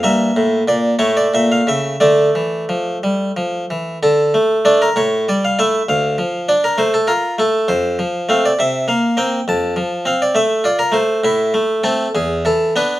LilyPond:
<<
  \new Staff \with { instrumentName = "Harpsichord" } { \time 6/8 \key d \minor \tempo 4. = 66 e''4 d''8 cis''16 d''16 e''16 f''16 e''8 | d''4. r4. | a'4 d''16 bes'16 cis''8 d''16 f''16 e''8 | f''4 d''16 bes'16 c''16 a'16 bes'8 a'8 |
c''4 f''16 d''16 e''8 f''8 g''8 | a''4 f''16 d''16 e''8 d''16 bes'16 c''8 | e'4 a'8 gis'8 a'8 b'8 | }
  \new Staff \with { instrumentName = "Harpsichord" } { \time 6/8 \key d \minor << { bes4. a4. | a2. | r2. | r2. |
r2. | r2. | r2. | } \\ { g,8 a,8 bes,8 a,8 bes,8 cis8 | d8 e8 f8 g8 f8 e8 | d8 a8 <a d'>8 a,8 g8 <a e'>8 | d,8 f8 d'8 a8 f'8 a8 |
f,8 f8 <a c'>8 c8 bes8 <bes c'>8 | f,8 f8 c'8 a8 f'8 a8 | a,8 a8 <a c'>8 e,8 e8 <b d'>8 | } >> }
>>